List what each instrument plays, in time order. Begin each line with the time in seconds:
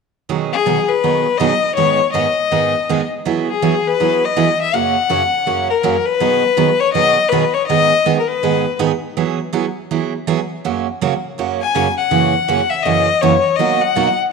0.29 steel-string acoustic guitar B2 D#3 F#3 B3 D#4 G#4
0.53 fiddle G#4
0.66 steel-string acoustic guitar B2 D#3 F#3 B3 D#4 G#4
0.89 fiddle B4
1.04 steel-string acoustic guitar B2 D#3 F#3 B3 D#4 G#4
1.38 steel-string acoustic guitar B2 D#3 F#3 B3 D#4 G#4, fiddle D#5
1.75 steel-string acoustic guitar G#2 D#3 G#3 B3 D#4 G#4, fiddle C#5
2.12 steel-string acoustic guitar G#2 D#3 G#3 B3 D#4 G#4, fiddle D#5
2.51 steel-string acoustic guitar G#2 D#3 G#3 B3 D#4 G#4
2.89 steel-string acoustic guitar G#2 D#3 G#3 B3 D#4 G#4
3.25 steel-string acoustic guitar E3 F#3 B3 E4 G#4
3.50 fiddle G#4
3.62 steel-string acoustic guitar E3 F#3 B3 E4 G#4
3.87 fiddle B4
4.00 steel-string acoustic guitar E3 F#3 B3 E4 G#4
4.25 fiddle D#5
4.36 steel-string acoustic guitar E3 F#3 B3 E4 G#4
4.61 fiddle E5
4.73 steel-string acoustic guitar F#2 C#3 F#3 A#3 C#4 F#4, fiddle F#5
5.09 steel-string acoustic guitar F#2 C#3 F#3 A#3 C#4 F#4
5.46 steel-string acoustic guitar F#2 C#3 F#3 A#3 C#4 F#4
5.70 fiddle A#4
5.83 steel-string acoustic guitar F#2 C#3 F#3 A#3 C#4 F#4
6.06 fiddle B4
6.20 steel-string acoustic guitar B2 D#3 F#3 B3 D#4 G#4
6.57 steel-string acoustic guitar B2 D#3 F#3 B3 D#4 G#4
6.80 fiddle C#5
6.93 steel-string acoustic guitar B2 D#3 F#3 B3 D#4 G#4, fiddle D#5
7.29 steel-string acoustic guitar B2 D#3 F#3 B3 D#4, fiddle B4
7.33 steel-string acoustic guitar G#4
7.54 fiddle C#5
7.67 steel-string acoustic guitar G#2 D#3 G#3 B3 D#4 G#4, fiddle D#5
8.06 steel-string acoustic guitar G#2 D#3 G#3 B3 D#4 G#4
8.19 fiddle A#4
8.28 fiddle B4
8.43 steel-string acoustic guitar G#2 D#3 G#3 B3 D#4 G#4
8.79 steel-string acoustic guitar G#2 D#3 G#3 B3 D#4 G#4
9.17 steel-string acoustic guitar E3 F#3 B3 E4 G#4
9.53 steel-string acoustic guitar E3 F#3 B3 E4 G#4
9.91 steel-string acoustic guitar E3 F#3 B3 E4 G#4
10.27 steel-string acoustic guitar E3 F#3 B3 E4 G#4
10.64 steel-string acoustic guitar F#2 C#3 F#3 A#3 C#4 F#4
11.01 steel-string acoustic guitar F#2 C#3 F#3 A#3 C#4 F#4
11.38 steel-string acoustic guitar F#2 C#3 F#3 A#3 C#4 F#4
11.61 fiddle G#5
11.75 steel-string acoustic guitar F#2 C#3 F#3 A#3 C#4 F#4
11.98 fiddle F#5
12.11 steel-string acoustic guitar F#2 C#3 E3 A#3 C#4 F#4
12.48 steel-string acoustic guitar F#2 C#3 E3 A#3 C#4 F#4
12.70 fiddle E5
12.83 steel-string acoustic guitar F#2 C#3 E3 A#3 C#4 F#4, fiddle D#5
13.21 steel-string acoustic guitar F#2 C#3 E3 A#3 C#4 F#4, fiddle C#5
13.56 steel-string acoustic guitar B2 F#3 A#3 D#4, fiddle D#5
13.60 steel-string acoustic guitar F#4
13.82 fiddle F#5
13.96 steel-string acoustic guitar B2 F#3 A#3 D#4 F#4